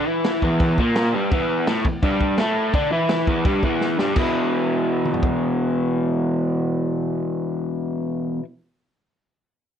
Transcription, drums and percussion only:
0.24 snare, crash
0.42 kick
0.59 kick, crash
0.78 kick
0.95 snare, crash
1.32 kick, crash
1.67 snare, crash
1.85 kick
2.03 kick, crash
2.21 kick
2.38 snare, crash
2.73 kick, crash
3.09 snare, crash
3.27 kick
3.45 kick, crash
3.63 kick
3.81 snare
3.99 snare
4.16 kick, crash
5.05 mid tom
5.14 floor tom
5.23 kick

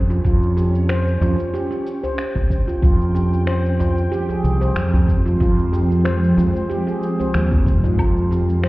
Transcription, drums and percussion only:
0.10 djembe slap, shaker
0.24 kick, djembe bass, shaker
0.43 shaker
0.57 djembe slap, shaker
0.75 shaker
0.89 finger snap, shaker
1.08 shaker
1.21 djembe slap, djembe tone, shaker
1.40 shaker
1.55 shaker
1.72 shaker
1.87 shaker
2.04 djembe tone, shaker
2.18 finger snap, shaker
2.35 kick, djembe tone, djembe bass, shaker
2.50 kick, shaker
2.67 djembe tone, shaker
2.82 kick, djembe bass, shaker
3.01 shaker
3.15 djembe slap, shaker
3.33 shaker
3.47 finger snap, shaker
3.66 shaker
3.80 djembe slap, djembe tone, shaker
3.98 shaker
4.13 shaker
4.29 djembe tone, shaker
4.44 djembe slap, shaker
4.61 djembe slap, djembe tone, shaker
4.76 finger snap, shaker
4.94 djembe bass, shaker
5.08 kick, shaker
5.26 djembe slap, shaker
5.41 kick, djembe bass, shaker
5.59 shaker
5.73 djembe slap, shaker
5.91 shaker
6.05 finger snap, shaker
6.24 shaker
6.38 djembe slap, djembe tone, shaker
6.56 shaker
6.71 shaker
6.88 shaker
7.03 shaker
7.20 djembe tone, shaker
7.34 finger snap, shaker
7.51 kick, djembe tone, djembe bass, shaker
7.66 kick, shaker
7.84 djembe tone, shaker
7.99 kick, djembe bass, low woodblock, shaker
8.17 shaker
8.32 djembe slap, shaker
8.50 shaker
8.64 finger snap, shaker

